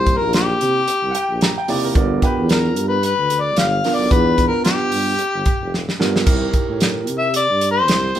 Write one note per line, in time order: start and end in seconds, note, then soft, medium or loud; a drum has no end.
0.00 0.17 C2 medium
0.00 0.81 A#3 medium
0.00 0.81 D#4 medium
0.00 0.81 E4 medium
0.00 0.81 G4 medium
0.00 0.19 C5 loud
0.06 kick medium
0.06 closed hi-hat medium
0.17 0.34 A#4 medium
0.21 0.56 A#1 medium
0.33 1.65 G4 medium
0.33 snare loud
0.33 closed hi-hat medium
0.61 0.85 C3 medium
0.61 closed hi-hat medium
0.88 closed hi-hat medium
1.03 1.14 C2 medium
1.11 1.14 F#5 medium
1.11 1.41 G5 medium
1.11 closed hi-hat medium
1.30 1.54 A#1 medium
1.41 1.56 A#5 medium
1.41 snare loud
1.41 closed hi-hat medium
1.58 1.68 G5 medium
1.68 1.93 C3 medium
1.68 1.94 A#3 medium
1.68 1.94 D#4 medium
1.68 1.94 E4 medium
1.68 1.94 G4 medium
1.68 1.83 D5 medium
1.68 open hi-hat medium
1.84 1.95 A#4 medium
1.95 2.20 G1 medium
1.95 2.97 B3 medium
1.95 2.97 D4 medium
1.95 2.97 F4 medium
1.95 2.97 A#4 medium
1.95 2.23 D5 medium
1.95 kick loud
1.95 closed hi-hat medium
2.22 2.48 G4 medium
2.22 2.50 B4 medium
2.22 kick medium
2.22 closed hi-hat medium
2.38 2.78 E2 medium
2.49 2.84 A#4 medium
2.49 snare loud
2.49 closed hi-hat medium
2.76 3.14 G2 medium
2.76 closed hi-hat medium
2.88 3.04 B4 medium
3.03 3.42 B4 medium
3.03 closed hi-hat medium
3.17 3.58 D2 medium
3.30 closed hi-hat medium
3.41 3.61 D5 medium
3.56 3.81 G1 medium
3.56 3.96 F5 medium
3.56 snare loud
3.56 closed hi-hat medium
3.84 4.10 B3 medium
3.84 4.10 D4 medium
3.84 4.10 F4 medium
3.84 4.10 A#4 medium
3.84 snare soft
3.84 open hi-hat medium
3.95 4.14 D5 medium
3.99 4.10 B1 medium
4.11 4.48 E2 medium
4.11 5.12 B3 medium
4.11 5.12 D4 medium
4.11 5.12 F4 medium
4.11 5.12 B4 medium
4.11 4.47 B4 medium
4.11 kick loud
4.11 closed hi-hat medium
4.38 kick medium
4.38 closed hi-hat medium
4.48 4.64 A#4 medium
4.64 5.96 G4 medium
4.64 snare loud
4.64 closed hi-hat medium
4.92 5.16 G2 medium
4.92 open hi-hat medium
5.19 closed hi-hat medium
5.34 5.45 G1 medium
5.46 kick medium
5.46 closed hi-hat medium
5.61 5.85 F1 medium
5.74 snare medium
5.89 snare medium
6.00 6.24 G2 medium
6.00 6.25 B3 medium
6.00 6.25 D4 medium
6.00 6.25 F4 medium
6.00 6.25 A#4 medium
6.00 snare medium
6.16 snare medium
6.26 6.51 C2 medium
6.26 7.27 D#4 medium
6.26 7.28 E4 medium
6.26 7.27 G4 medium
6.26 7.27 A#4 medium
6.26 kick loud
6.26 closed hi-hat medium
6.26 splash medium
6.53 kick medium
6.53 closed hi-hat medium
6.69 7.10 A2 medium
6.80 snare loud
6.80 closed hi-hat medium
7.07 7.45 C3 medium
7.07 closed hi-hat medium
7.18 7.34 E5 medium
7.34 7.69 D5 loud
7.34 closed hi-hat medium
7.50 7.90 G2 medium
7.61 closed hi-hat medium
7.72 8.20 C5 medium
7.88 8.13 C2 loud
7.88 snare loud
7.88 closed hi-hat medium
8.15 8.20 A#3 medium
8.15 8.20 D#4 medium
8.15 8.20 E4 medium
8.15 8.20 G4 medium
8.15 open hi-hat medium